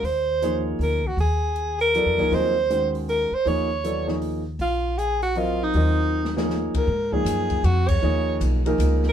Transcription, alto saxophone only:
X:1
M:3/4
L:1/8
Q:"Swing" 1/4=158
K:Ebdor
V:1 name="Alto saxophone"
c3 z B G | A3 B3 | c3 z B c | d4 z2 |
F2 A G F E- | E4 z B- | [K:G#dor] _B G3 F c- | c2 z3 A |]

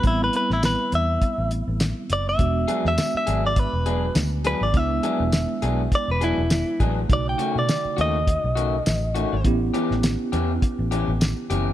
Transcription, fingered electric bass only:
X:1
M:4/4
L:1/16
Q:"Swing 16ths" 1/4=102
K:Emix
V:1 name="Fingered electric bass" clef=bass
A,,,2 z A,,,2 z E,,2 z A,,,2 A,,,2 z F,,,2 | E,,,2 z E,, z2 G,,,3 E,,,3 D,,3 G,,, | C,,2 z E,,,2 z B,,,2 z E,,,2 E,,,2 z A,,,2 | B,,,2 z B,, z2 ^D,,3 B,,,3 A,,,3 G,,, |
A,,,2 z A,,,2 z E,,2 z A,,,2 A,,,2 z F,,,2 |]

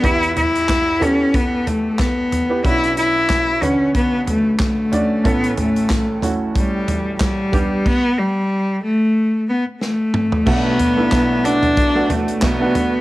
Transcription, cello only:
X:1
M:4/4
L:1/8
Q:"Swing 16ths" 1/4=92
K:Bm
V:1 name="Cello"
E E2 C B, A, B,2 | E E2 C B, A, A,2 | B, A,2 z G,2 G,2 | B, G,2 A,2 B, A,2 |
B,3 D2 A, B,2 |]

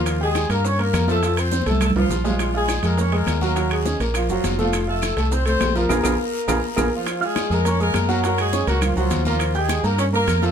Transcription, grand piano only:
X:1
M:4/4
L:1/8
Q:1/4=205
K:Bbm
V:1 name="Grand piano"
[B,B] [=G=g]2 [B,B] [Dd] [B,B]2 [F,F] | [F,F]2 [Cc] [=A,=A]2 [F,F]2 [_A,_A]- | [A,A] [Ff]2 [A,A] [B,B] [A,A]2 [G,G] | [G,G]2 [Dd] [B,B]2 [G,G]2 [=A,=A]- |
[=A,=A] [Ff]2 [A,A] [Cc] [A,A]2 [F,F] | [FAB] [FAB] z2 [FAB] z [FAB] z | z [Fff']2 [A,Aa] [B,Bb] [A,Aa]2 [G,Gg] | [G,Gg]2 [Ddd'] [B,Bb]2 [G,Gg]2 [B,Bb]- |
[B,Bb] [=G=g=g']2 [B,Bb] [Ddd'] [B,Bb]2 [F,Ff] |]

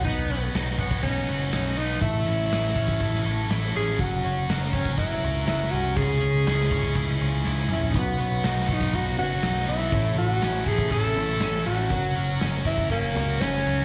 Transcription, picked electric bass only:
X:1
M:4/4
L:1/8
Q:1/4=121
K:Bmix
V:1 name="Picked electric bass" clef=bass
B,,, B,,, B,,, B,,, B,,, F,,, B,,, B,,, | A,,, A,,, A,,, A,,, A,,, A,,, A,,, A,,, | F,,, F,,, F,,, F,,, F,,, C,, F,,, ^B,,, | C,, C,, C,, C,, C,, C,, C,, ^A,,, |
B,,, B,,, B,,, B,,, B,,, F,,, B,,, B,,, | A,,, A,,, A,,, A,,, A,,, A,,, A,,, A,,, | F,,, F,,, F,,, F,,, F,,, C,, F,,, C,, |]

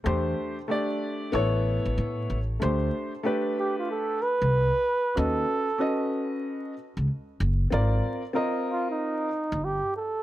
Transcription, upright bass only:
X:1
M:4/4
L:1/16
Q:"Swing 16ths" 1/4=94
K:Ddor
V:1 name="Upright bass" clef=bass
E,,2 z6 A,,,3 A,,, A,,2 A,,,2 | D,,2 z8 z C,,2 z3 | ^D,,2 z8 z ^C,, z2 ^F,,,2 | _A,,,2 z8 z G,,,2 z3 |]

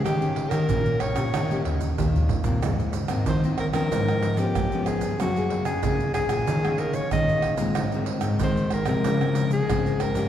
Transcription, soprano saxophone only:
X:1
M:4/4
L:1/16
Q:1/4=93
K:Ab
V:1 name="Soprano saxophone"
G3 B3 d4 z6 | z4 c2 B B4 G3 A2 | _G3 A3 A4 B d e3 z | z4 c2 B B4 A3 B2 |]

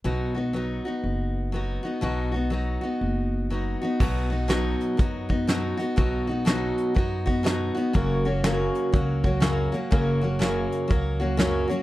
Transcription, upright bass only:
X:1
M:4/4
L:1/8
Q:"Swing" 1/4=122
K:B
V:1 name="Upright bass" clef=bass
B,,,4 F,,,4 | B,,,4 F,,,4 | B,,,4 F,,4 | B,,,4 F,,4 |
F,,,4 C,,4 | F,,,4 C,,4 |]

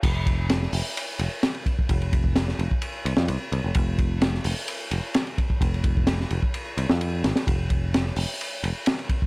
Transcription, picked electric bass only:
X:1
M:4/4
L:1/16
Q:1/4=129
K:Cm
V:1 name="Picked electric bass" clef=bass
F,,,4- F,,, z F,,, z3 F,,, z4 z | F,,,4- F,,, z F,,, z3 C,, F,, C,, z C,, F,,, | F,,,4- F,,, z F,,, z3 F,,, z4 z | F,,,4- F,,, z F,,, z3 C,, F,,3 A,,, z |
F,,,4- F,,, z F,,, z3 F,,, z4 z |]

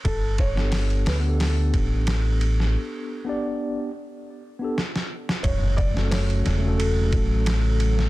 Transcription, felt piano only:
X:1
M:4/4
L:1/8
Q:"Swing 16ths" 1/4=89
K:F#phr
V:1 name="Felt piano"
A c2 B A3 z | z8 | c d c2 A3 z |]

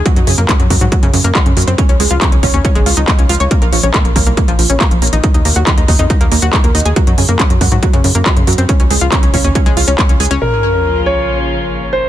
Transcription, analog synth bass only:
X:1
M:4/4
L:1/16
Q:1/4=139
K:Bbm
V:1 name="Analog synth bass" clef=bass
z G,, G,, G,, z G,, G,, A,, z G,, G,, G,, z G,, G,, G,, | z D,, D,, D,, z D,, D,, E,, z A,,, D,, D,, z D,, D,, D,, | z B,,, B,,, B,,, z B,,, B,,, C,, z B,,, B,,, B,,, z B,,, B,,, B,,, | z E,, E,, E,, z E,, E,, F,, z E,, E,, E,, z E,, E,, E,, |
z G,, G,, G,, z G,, G,, A,, z G,, G,, G,, z G,, G,, G,, | z D,, D,, D,, z D,, D,, E,, z D,, D,, D,, z D,, D,, D,, | B,,,16 |]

